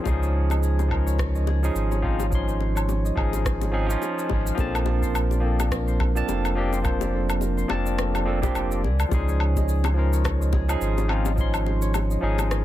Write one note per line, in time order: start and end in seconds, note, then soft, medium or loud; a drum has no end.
0.00 0.87 F3 medium
0.00 0.62 G#4 medium
0.00 1.32 A#4 medium
0.00 0.28 D5 medium
0.05 1.70 C#2 loud
0.05 0.88 C#4 medium
0.05 0.88 D#4 medium
0.05 0.89 G#4 loud
0.05 0.28 C5 medium
0.05 kick loud
0.05 high bongo medium
0.05 cabasa soft
0.22 0.85 C#5 medium
0.22 cabasa soft
0.50 1.35 D#5 medium
0.50 high bongo medium
0.50 cabasa medium
0.50 low woodblock medium
0.63 1.47 G#4 medium
0.63 cabasa medium
0.79 0.90 C5 medium
0.79 high bongo medium
0.79 cabasa soft
0.88 1.59 F3 medium
0.88 1.60 C#4 medium
0.88 1.60 D#4 medium
0.88 1.12 C5 medium
0.88 kick medium
0.88 low woodblock medium
0.93 1.61 A#4 medium
1.06 1.69 C#5 loud
1.06 cabasa medium
1.18 kick loud
1.18 cross-stick medium
1.18 high bongo soft
1.18 cabasa medium
1.35 2.19 D#5 medium
1.35 cabasa soft
1.47 2.31 G#4 medium
1.47 high bongo medium
1.62 2.00 F3 medium
1.62 2.01 C#4 medium
1.62 2.01 D#4 medium
1.62 2.02 G#4 loud
1.62 1.75 C5 medium
1.62 cabasa medium
1.75 3.11 G#1 medium
1.75 1.97 C5 medium
1.75 cabasa medium
1.91 2.54 C#5 loud
1.91 high bongo soft
1.91 cabasa soft
2.02 2.25 F3 medium
2.02 2.25 C4 medium
2.02 2.25 C#4 medium
2.02 2.25 D#4 medium
2.02 2.26 F4 loud
2.02 kick medium
2.19 3.04 D#5 medium
2.19 high bongo medium
2.19 cabasa medium
2.30 3.13 F3 medium
2.30 3.14 C#4 medium
2.30 3.15 D#4 medium
2.30 3.16 G#4 medium
2.30 kick loud
2.30 cabasa soft
2.35 3.16 C6 medium
2.48 2.59 C5 medium
2.48 cabasa soft
2.60 2.81 C5 medium
2.60 high bongo soft
2.75 3.39 C#5 loud
2.75 cabasa medium
2.75 low woodblock medium
2.89 high bongo medium
2.89 cabasa soft
3.05 4.17 D#5 medium
3.05 cabasa soft
3.15 3.96 G#1 medium
3.15 3.71 F3 medium
3.15 3.71 C#4 medium
3.15 3.71 D#4 medium
3.15 3.89 G#4 medium
3.15 3.72 G#4 loud
3.15 kick medium
3.15 low woodblock medium
3.33 3.44 C5 medium
3.33 high bongo medium
3.33 cabasa medium
3.45 3.67 C5 medium
3.45 kick loud
3.45 cross-stick medium
3.45 cabasa medium
3.61 5.08 C#5 medium
3.61 high bongo medium
3.61 cabasa soft
3.72 3.85 F3 medium
3.72 3.85 C4 medium
3.72 3.86 C#4 medium
3.72 3.86 D#4 medium
3.72 3.86 G#4 loud
3.86 4.54 F3 medium
3.86 4.55 C#4 medium
3.86 4.56 D#4 medium
3.86 4.01 G#4 loud
3.86 cabasa medium
3.91 4.56 F4 loud
4.02 4.29 G#4 loud
4.02 high bongo soft
4.02 cabasa medium
4.18 5.37 D#5 medium
4.18 cabasa soft
4.29 4.52 G#1 loud
4.29 4.64 G#4 medium
4.29 kick medium
4.29 high bongo medium
4.46 6.12 F5 medium
4.46 cabasa medium
4.55 6.22 A#1 loud
4.55 5.39 F3 medium
4.55 5.40 A#3 medium
4.55 5.40 C4 medium
4.55 5.41 D4 medium
4.55 4.80 A4 medium
4.55 kick loud
4.55 high bongo medium
4.55 cabasa medium
4.60 5.42 A5 loud
4.74 4.85 A#4 medium
4.74 cabasa soft
4.74 low woodblock medium
4.86 5.49 A#4 medium
4.86 high bongo medium
5.02 5.87 C5 loud
5.02 kick medium
5.02 cabasa medium
5.15 cabasa medium
5.15 low woodblock medium
5.31 6.15 D5 medium
5.31 high bongo soft
5.31 cabasa soft
5.40 6.11 F3 medium
5.40 6.11 A#3 medium
5.40 6.12 C4 medium
5.40 6.13 D4 medium
5.40 5.65 A4 medium
5.59 5.71 A#4 medium
5.59 high bongo medium
5.59 cabasa medium
5.59 low woodblock medium
5.71 6.34 A#4 medium
5.71 kick loud
5.71 cross-stick medium
5.71 cabasa medium
5.87 6.72 C5 medium
5.87 cabasa soft
6.00 kick loud
6.00 high bongo soft
6.00 low woodblock medium
6.15 6.53 F3 loud
6.15 6.54 A#3 medium
6.15 6.54 C4 medium
6.15 6.54 D4 medium
6.15 7.01 D5 medium
6.15 6.54 A5 loud
6.15 cabasa medium
6.28 7.64 F1 loud
6.28 6.50 A4 medium
6.28 high bongo medium
6.28 cabasa medium
6.44 6.56 A#4 medium
6.44 cabasa soft
6.44 low woodblock medium
6.55 6.77 F3 medium
6.55 6.78 A#3 medium
6.55 6.78 C4 medium
6.55 6.78 D4 medium
6.55 6.79 G4 loud
6.55 7.19 A#4 medium
6.72 7.57 C5 loud
6.72 high bongo soft
6.72 cabasa medium
6.82 7.66 F3 medium
6.82 7.66 A#3 medium
6.82 7.67 C4 medium
6.82 7.68 D4 medium
6.82 kick loud
6.82 cabasa medium
6.82 low woodblock medium
6.87 7.68 C5 medium
7.01 7.85 D5 medium
7.01 high bongo medium
7.01 cabasa soft
7.13 7.35 A4 medium
7.29 7.41 A#4 medium
7.29 cabasa medium
7.29 low woodblock medium
7.41 8.04 A#4 medium
7.41 high bongo medium
7.41 cabasa medium
7.57 8.42 C5 loud
7.57 cabasa soft
7.68 8.49 F1 medium
7.68 8.23 F3 loud
7.68 8.23 A#3 medium
7.68 8.24 C4 medium
7.68 8.24 D4 medium
7.68 8.25 A5 loud
7.68 high bongo medium
7.68 low woodblock medium
7.86 8.71 D5 medium
7.86 cabasa medium
7.98 8.20 A4 medium
7.98 cross-stick medium
7.98 cabasa medium
8.14 8.26 A#4 medium
8.14 high bongo medium
8.14 cabasa soft
8.14 low woodblock medium
8.25 8.38 F3 medium
8.25 8.38 A#3 medium
8.25 8.39 C4 medium
8.25 8.39 D4 medium
8.25 8.39 A4 loud
8.25 10.38 A#4 medium
8.41 8.81 F3 medium
8.41 8.81 A#3 medium
8.41 8.82 C4 medium
8.41 8.82 D4 medium
8.41 8.82 G4 loud
8.41 9.00 C5 loud
8.41 kick loud
8.41 high bongo medium
8.41 cabasa medium
8.55 8.85 F1 medium
8.55 cabasa medium
8.55 low woodblock medium
8.71 9.34 D5 medium
8.71 cabasa soft
8.83 9.04 C#2 medium
8.83 9.68 G#4 medium
8.83 high bongo medium
9.00 9.12 C5 medium
9.00 cabasa medium
9.00 low woodblock medium
9.09 10.75 C#2 loud
9.09 9.92 F3 medium
9.09 9.93 C#4 medium
9.09 9.34 C5 medium
9.09 kick loud
9.09 high bongo medium
9.09 cabasa medium
9.13 9.94 D#4 medium
9.13 9.95 G#4 loud
9.28 9.91 C#5 loud
9.28 cabasa soft
9.40 low woodblock medium
9.56 10.41 D#5 medium
9.56 kick medium
9.56 high bongo medium
9.56 cabasa medium
9.68 10.53 G#4 medium
9.68 cabasa medium
9.84 9.97 C5 medium
9.84 high bongo medium
9.84 cabasa soft
9.84 low woodblock medium
9.94 10.64 F3 medium
9.94 10.65 C#4 medium
9.94 10.66 D#4 medium
9.94 10.20 C5 medium
9.99 10.67 A#4 medium
10.13 10.75 C#5 loud
10.13 cabasa medium
10.24 kick loud
10.24 cross-stick medium
10.24 high bongo medium
10.24 cabasa medium
10.24 low woodblock medium
10.41 11.25 D#5 medium
10.41 cabasa soft
10.53 11.38 G#4 medium
10.53 kick loud
10.53 high bongo medium
10.68 11.06 F3 loud
10.68 11.07 C#4 medium
10.68 11.07 D#4 medium
10.68 11.07 G#4 loud
10.68 10.81 C5 medium
10.68 cabasa medium
10.68 low woodblock medium
10.81 12.17 G#1 medium
10.81 11.04 C5 medium
10.81 cabasa medium
10.98 11.60 C#5 loud
10.98 high bongo medium
10.98 cabasa soft
11.08 11.30 F3 loud
11.08 11.31 C4 medium
11.08 11.31 C#4 medium
11.08 11.31 D#4 medium
11.08 11.32 F4 loud
11.08 low woodblock medium
11.25 12.11 D#5 medium
11.25 high bongo medium
11.25 cabasa medium
11.36 12.19 F3 medium
11.36 12.20 C#4 medium
11.36 12.21 D#4 medium
11.36 12.23 G#4 medium
11.36 kick loud
11.36 cabasa medium
11.41 12.21 C6 medium
11.54 11.65 C5 medium
11.54 cabasa soft
11.54 low woodblock medium
11.66 11.88 C5 medium
11.66 high bongo soft
11.82 12.46 C#5 loud
11.82 cabasa medium
11.94 high bongo medium
11.94 cabasa medium
11.94 low woodblock medium
12.11 12.65 D#5 medium
12.11 cabasa soft
12.21 12.65 G#1 medium
12.21 12.65 F3 medium
12.21 12.65 C#4 medium
12.21 12.65 D#4 medium
12.21 12.65 G#4 medium
12.21 12.65 G#4 loud
12.38 12.50 C5 medium
12.38 high bongo medium
12.38 cabasa medium
12.38 low woodblock medium
12.51 12.65 C5 medium
12.51 cross-stick medium
12.51 cabasa medium